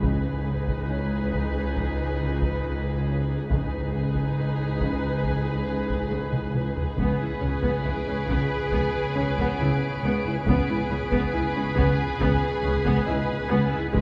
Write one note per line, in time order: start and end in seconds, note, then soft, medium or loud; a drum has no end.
0.00 3.46 C#2 soft
0.00 3.46 C#2 medium
0.00 0.28 C#3 soft
0.00 3.46 D#4 soft
0.00 3.46 G#4 soft
0.00 3.46 B4 soft
0.00 0.42 F#5 soft
0.00 taiko medium
0.46 0.72 C#3 soft
0.68 taiko medium
0.89 1.15 C#3 soft
0.89 3.46 C#4 soft
0.89 3.46 C#5 soft
1.32 1.58 C#3 medium
1.32 taiko medium
1.77 2.03 C#3 soft
1.77 taiko medium
2.21 2.47 C#3 soft
2.42 taiko medium
2.64 2.90 C#3 medium
3.08 3.34 C#4 soft
3.49 6.94 C#2 soft
3.49 6.94 C#2 medium
3.49 3.77 C#3 medium
3.49 6.94 D#4 medium
3.49 6.94 G#4 soft
3.49 6.93 B4 soft
3.49 taiko medium
3.95 4.21 C#3 soft
4.15 taiko medium
4.39 4.64 C#3 soft
4.81 5.07 C#3 medium
4.81 taiko medium
5.24 5.51 C#3 soft
5.24 taiko medium
5.68 5.94 C#3 soft
5.90 taiko medium
6.11 6.38 C#3 medium
6.11 taiko high medium
6.33 taiko mid medium
6.54 6.81 C#4 soft
6.54 9.12 B4 soft
6.54 taiko mid medium
6.76 taiko low medium
6.98 7.06 C#2 medium
6.98 10.42 C#2 medium
6.98 7.24 C#3 medium
6.98 7.19 B3 medium
6.98 10.42 G#4 medium
6.98 10.42 B4 soft
6.98 13.46 C#5 soft
6.98 taiko medium
7.20 7.28 C#2 soft
7.20 7.28 E4 soft
7.41 7.50 C#2 soft
7.41 7.68 C#3 soft
7.41 7.49 C#4 soft
7.62 7.71 C#2 medium
7.62 7.83 B3 medium
7.62 taiko medium
7.84 7.92 C#2 soft
7.84 7.93 C#2 soft
7.84 8.11 C#3 soft
7.84 7.92 E4 soft
7.84 12.06 D7 soft
8.06 8.14 C#2 soft
8.06 8.15 C#4 soft
8.28 8.36 C#2 medium
8.28 8.37 C#2 medium
8.28 8.55 C#3 medium
8.28 8.49 B3 medium
8.28 taiko medium
8.71 8.79 C#2 medium
8.71 8.80 C#2 medium
8.71 8.99 C#3 soft
8.71 8.92 B3 medium
8.71 taiko medium
9.15 9.23 C#2 soft
9.15 9.42 C#3 medium
9.15 11.72 C#4 soft
9.15 9.24 C#4 soft
9.15 11.72 C#5 medium
9.38 9.46 C#2 medium
9.38 9.58 B3 medium
9.38 taiko medium
9.59 9.67 C#2 soft
9.59 9.86 C#3 medium
9.59 9.68 E4 medium
10.02 10.10 C#2 medium
10.02 10.11 C#2 medium
10.02 10.24 B3 medium
10.02 10.29 C#4 medium
10.25 10.33 C#2 soft
10.25 10.33 E4 medium
10.46 10.54 C#2 medium
10.46 13.90 C#2 medium
10.46 10.73 C#3 medium
10.46 10.67 B3 medium
10.46 13.91 G#4 medium
10.46 13.90 B4 medium
10.46 taiko medium
10.69 10.77 C#2 soft
10.69 10.77 E4 soft
10.89 10.97 C#2 soft
10.89 10.98 C#2 soft
10.89 11.16 C#3 medium
10.89 10.98 C#4 soft
11.12 11.20 C#2 medium
11.12 11.32 B3 medium
11.12 taiko medium
11.33 11.42 C#2 medium
11.33 11.42 C#2 soft
11.33 11.59 C#3 soft
11.33 11.41 E4 soft
11.55 11.63 C#2 soft
11.55 11.63 C#4 soft
11.75 11.84 C#2 medium
11.75 11.86 C#2 medium
11.75 12.02 C#3 medium
11.75 11.96 B3 medium
11.75 taiko medium
12.06 13.46 D#7 soft
12.20 12.28 C#2 medium
12.20 12.46 C#3 soft
12.20 12.40 B3 medium
12.20 taiko medium
12.63 12.72 C#2 soft
12.63 12.90 C#3 medium
12.63 12.71 C#4 medium
12.84 12.93 C#2 medium
12.84 13.05 B3 medium
12.84 taiko medium
13.05 13.16 C#2 soft
13.05 13.33 C#3 medium
13.05 14.01 D#4 soft
13.05 13.13 E4 medium
13.05 14.01 D#5 medium
13.48 13.59 C#2 medium
13.48 13.69 B3 medium
13.48 13.76 C#4 medium
13.70 13.80 C#2 soft
13.70 13.78 E4 medium
13.92 14.01 C#2 medium
13.92 14.01 C#3 medium
13.92 14.01 G#3 medium
13.92 14.01 G#4 medium
13.92 14.01 B4 medium
13.92 taiko medium